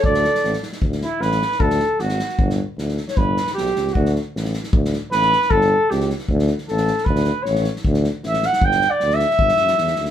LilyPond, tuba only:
\new Staff \with { instrumentName = "Tuba" } { \clef bass \time 2/4 \key d \major \tempo 4 = 154 d,4 a,,8 r8 | d,4 a,,4 | d,4 gis,,4 | g,,4 d,4 |
g,,4 b,,8 cis,8 | d,4 a,,4 | d,4 a,,4 | g,,4 cis,4 |
d,4 a,,4 | d,4 a,,4 | d,4 a,,4 | g,,4 d,4 |
g,,8 fis,8 e,8 d,8 | }